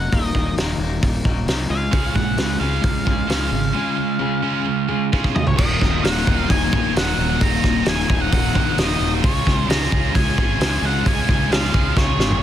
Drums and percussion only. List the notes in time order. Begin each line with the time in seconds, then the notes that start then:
0.12 kick, open hi-hat
0.35 kick
0.58 snare, open hi-hat
1.03 kick, open hi-hat
1.25 kick
1.48 snare, open hi-hat
1.93 kick, open hi-hat
2.16 kick
2.38 snare, open hi-hat
2.83 kick, open hi-hat
3.07 kick
3.30 snare, open hi-hat
5.13 kick
5.24 kick
5.36 mid tom
5.47 floor tom
5.58 kick, crash
5.81 kick, snare
6.05 snare, open hi-hat
6.17 snare
6.27 kick
6.50 kick, open hi-hat
6.73 kick
6.96 snare, open hi-hat
7.41 kick, open hi-hat
7.64 kick, snare
7.86 snare, open hi-hat
7.99 snare
8.10 kick
8.33 kick, open hi-hat
8.55 kick
8.78 snare, open hi-hat
9.24 kick, open hi-hat
9.47 kick, snare
9.70 snare, open hi-hat
9.82 snare
9.92 kick
10.15 kick, open hi-hat
10.38 kick
10.61 snare, open hi-hat
11.06 kick, open hi-hat
11.29 kick
11.52 snare, open hi-hat
11.65 snare
11.74 kick
11.97 kick, snare
12.20 snare
12.31 mid tom